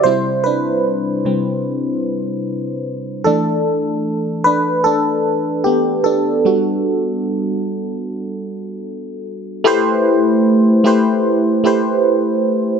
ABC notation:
X:1
M:4/4
L:1/8
Q:"Swing 16ths" 1/4=75
K:Ador
V:1 name="FM electric piano"
[Ec] [DB]3 z4 | [DA]3 [DB] [DA]2 [B,G] [DA]- | [DA]6 z2 | [A,EGBc]2 z [A,EGBc] z [A,EGBc]2 z |]
V:2 name="FM electric piano" clef=bass
[C,G,C]3 [C,G,C] z4 | [E,A,D]8 | [G,B,F]8 | z8 |]